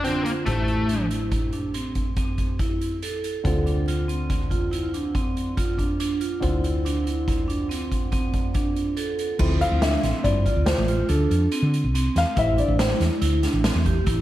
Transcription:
Already playing: D2
0.04 D3 C4 D4 F4, closed hi-hat
0.24 A#3 F4, closed hi-hat
0.45 A1 A3 E4 G4 C5, kick, closed hi-hat
0.68 E4, closed hi-hat
0.89 D4, closed hi-hat
1.10 E4, closed hi-hat
1.32 kick, closed hi-hat
1.52 D4, closed hi-hat
1.74 C4, closed hi-hat
1.95 kick, closed hi-hat
2.16 C4, kick, closed hi-hat
2.38 kick, closed hi-hat
2.59 E4, kick, closed hi-hat
2.81 closed hi-hat
3.02 A4, closed hi-hat
3.24 closed hi-hat
3.44 D2 D3 C4 F4 A4, kick, closed hi-hat
3.66 D4, closed hi-hat
3.88 F4, closed hi-hat
4.08 C4, closed hi-hat
4.30 kick, closed hi-hat
4.51 F4, kick, closed hi-hat
4.71 E4, closed hi-hat
4.94 D4, closed hi-hat
5.15 C4, kick, closed hi-hat
5.37 closed hi-hat
5.57 F4, kick, closed hi-hat
5.78 D4, kick, closed hi-hat
6.00 D4, closed hi-hat
6.21 F4, closed hi-hat
6.40 D2 D3 C4 E4 F4, kick, closed hi-hat
6.64 E4, closed hi-hat
6.85 D4, closed hi-hat
7.06 E4, closed hi-hat
7.28 kick, closed hi-hat
7.48 D4, closed hi-hat
7.69 C4, closed hi-hat
7.92 kick, closed hi-hat
8.12 C4, kick, closed hi-hat
8.33 kick, closed hi-hat
8.54 D4, kick, closed hi-hat
8.76 closed hi-hat
8.97 A4, closed hi-hat
9.19 closed hi-hat
9.39 D2 F3 C4 E4, kick, crash
9.61 E4 F5, closed hi-hat
9.71 D2
9.81 D4 E5, snare, closed hi-hat
10.03 A1 C4, snare, closed hi-hat
10.24 G2 F3 C4 E4 D5, kick, closed hi-hat
10.46 F4, kick, closed hi-hat
10.56 D2
10.66 C5, snare, closed hi-hat
10.78 A1
10.88 F4, closed hi-hat
11.09 D2 D4 A4, closed hi-hat
11.30 F2, closed hi-hat
11.52 C4, closed hi-hat
11.62 D3
11.74 closed hi-hat
11.84 C2
11.95 C4, closed hi-hat
12.16 E2 F5, snare, closed hi-hat
12.36 A1 G3 C4 E4 E5, kick, closed hi-hat
12.57 D4 D5, closed hi-hat
12.68 A1
12.79 E4 C5, snare, closed hi-hat
13.00 E2, snare, closed hi-hat
13.21 D2 E4, closed hi-hat
13.43 D4, snare, closed hi-hat
13.53 A1
13.64 C4, snare, closed hi-hat
13.75 E2
13.86 G4, kick, closed hi-hat
14.06 A1 E4, kick, closed hi-hat

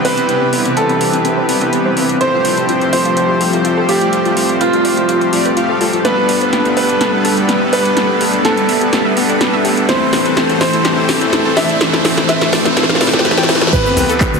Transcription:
Already playing: C3 G3 D4 E4 B4, riser
0.05 C2 E3 B3 C4 G4 B4 C5, open hi-hat
0.17 C4, closed hi-hat
0.29 E3 B3 C4 G4 B4, closed hi-hat
0.41 C4
0.53 G1 C4, open hi-hat
0.65 C4, closed hi-hat
0.77 A4, closed hi-hat
0.89 G1 C4, closed hi-hat
1.01 C5, open hi-hat
1.13 C4, closed hi-hat
1.25 C2 C4, closed hi-hat
1.37 C5
1.49 E3 B3 C4 G4 B4, open hi-hat
1.61 C2 B4, closed hi-hat
1.73 C4, closed hi-hat
1.85 C5
1.97 F1 C4, open hi-hat
2.09 C4, closed hi-hat
2.21 F3 G3 A3 C4 F4 G4 C5, closed hi-hat
2.33 F4
2.45 F1 F4, open hi-hat
2.57 B4, closed hi-hat
2.69 F4, closed hi-hat
2.81 G1, closed hi-hat
2.93 F4 C5, open hi-hat
3.05 F4, closed hi-hat
3.17 F1 G4, closed hi-hat
3.29 F4
3.41 G4, open hi-hat
3.53 F1 F4, closed hi-hat
3.65 F4, closed hi-hat
3.77 A4
3.89 F1 F3 A3 C4 F4 G4 D5, open hi-hat
4.01 F4, closed hi-hat
4.13 F3 A3 C4 G4 C5, closed hi-hat
4.25 F4, closed hi-hat
4.37 C2 F4, open hi-hat
4.49 F4, closed hi-hat
4.61 F4 B4, closed hi-hat
4.73 C2 F4, closed hi-hat
4.85 D5, open hi-hat
4.97 F4, closed hi-hat
5.09 F1 F4, closed hi-hat
5.21 C5, closed hi-hat
5.33 F3 A3 C4 F4 G4 D5, open hi-hat
5.45 F1 B4, closed hi-hat
5.57 F3 A3 C4 F4 G4 F5, closed hi-hat
5.69 A4
5.81 G1 F3 A3 C4 F4 G4 A4, open hi-hat
5.93 F4, closed hi-hat
6.05 G3 B3 D4 A4 B4 D5, snare, closed hi-hat
6.17 G4
6.29 G1 G4, open hi-hat
6.41 C5, closed hi-hat
6.53 G4, snare, closed hi-hat
6.65 A1, closed hi-hat
6.77 G4 B4, open hi-hat
6.89 G4, closed hi-hat
7.01 G1 A4, snare, closed hi-hat
7.13 G4
7.25 A4, open hi-hat
7.37 G1 G4, closed hi-hat
7.49 G4, snare, closed hi-hat
7.61 B4
7.73 G1 G3 B3 D4 G4 A4 B4 D5, open hi-hat
7.85 G4, closed hi-hat
7.97 G3 B3 D4 A4 B4, snare, closed hi-hat
8.09 G4
8.21 D1 G4, open hi-hat
8.33 G4, closed hi-hat
8.45 A4 C5, snare, closed hi-hat
8.57 G4, closed hi-hat
8.69 E5, open hi-hat
8.81 G4, closed hi-hat
8.93 G1 G4, snare, closed hi-hat
9.05 E5
9.17 G3 B3 D4 G4 A4 B4, open hi-hat
9.29 G1 D5, closed hi-hat
9.41 G4, snare, closed hi-hat
9.53 E5
9.65 A1 G4, open hi-hat
9.77 G4, closed hi-hat
9.89 E3 A3 C4 A4 C5, snare, closed hi-hat
10.01 E4
10.13 A1 E4, snare, open hi-hat
10.25 B4, closed hi-hat
10.37 E4, snare, closed hi-hat
10.49 B1, closed hi-hat
10.61 E4 C5, snare, open hi-hat
10.73 E4, closed hi-hat
10.85 A1 G4, snare, closed hi-hat
10.97 E4
11.09 G4, snare, open hi-hat
11.21 A1 E4, closed hi-hat
11.33 E4, snare, closed hi-hat
11.45 A4
11.57 A1 E3 A3 C4 E4 A4 D5 E5, snare, open hi-hat
11.69 E4, closed hi-hat
11.81 E3 A3 C4 A4 C5, snare, closed hi-hat
11.93 E4, snare
12.05 E4, snare, open hi-hat
12.17 E4, snare, closed hi-hat
12.29 B4 E5, snare, closed hi-hat
12.41 E4, snare, closed hi-hat
12.53 D5, snare, open hi-hat
12.65 E4, snare, closed hi-hat
12.77 A1 E4, snare, closed hi-hat
12.83 snare
12.89 F5, snare, closed hi-hat
12.95 snare
13.01 E3 A3 C4 E4 A4 D5, snare, open hi-hat
13.07 snare
13.13 G5, snare, closed hi-hat
13.19 snare
13.25 E3 A3 C4 E4 A4 E5, snare, closed hi-hat
13.31 snare
13.37 G5, snare, closed hi-hat
13.43 snare
13.49 E3 A3 C4 E4 A4 B4, snare, open hi-hat
13.55 snare
13.61 E4, snare, closed hi-hat
13.67 snare
13.73 E3 B3 C4 G4 B4, kick, closed hi-hat, crash, sub drop, cabasa
13.85 C4, cabasa
13.97 C2 C4, open hi-hat, cabasa
14.09 A4, closed hi-hat, cabasa
14.20 C4, kick, clap, closed hi-hat, cabasa
14.33 D2, cabasa

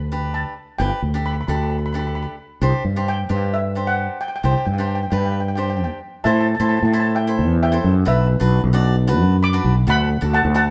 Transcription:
Already playing: D2 B5
0.12 D4 G4 B4
0.34 A5
0.79 G1 D4 G4 B4 G5
1.02 D2
1.14 D4 G4 A4
1.26 B5
1.33 B5
1.41 B5
1.48 D2 D4 G4 A4 B5
1.55 B5
1.63 B5
1.70 B5
1.78 B5
1.86 B5
1.93 D4 G4 A4 B5
1.99 B5
2.07 B5
2.15 B5
2.23 B5
2.62 C2 D4 G4 C5
2.85 G2
2.96 D4 G4 C5
3.08 G5
3.29 G2 D4 G4 C5
3.54 E5
3.75 D4 G4 C5
3.87 F#5
4.21 G5
4.28 G5
4.36 G5
4.43 C2 D4 G4 C5 G5
4.51 G5
4.58 G5
4.65 G2 G5
4.73 G5
4.78 D4 G4 C5 G5
4.88 G5
4.95 G5
5.03 G5
5.11 G2 D4 G4 B4 G5
5.18 G5
5.26 G5
5.32 G5
5.40 G5
5.48 G5
5.56 D4 G4 C5 G5
5.63 G5
5.70 G5
5.77 G5
5.84 G5
6.24 A2 E4 A4 C5 E5 A5
6.32 A5
6.41 A5
6.47 A5
6.55 A5
6.60 A2 E4 A4 C5
6.64 A5
6.69 A5
6.77 A5
6.83 A2 A5
6.93 E4 A4 C5 A5
7.00 A5
7.15 E5 G5
7.27 E4 A4 C5
7.39 E2
7.63 E5 G5
7.72 E4 A4 C5
7.84 F#2
8.05 B1 D4 F#4 B4 E5
8.40 B1 D4 F#4 B4
8.64 B1
8.73 D4 F#4 D5
9.07 D4 F#4 B4
9.20 F#2
9.43 B5 D6
9.53 D4 F#4 B4
9.64 B1
9.87 D2 D4 F#4 A4 F#5 B5
10.21 D2 D4 F#4 A4
10.34 F#5 A5
10.45 D2
10.54 D4 F#4 A4 F#5 A5

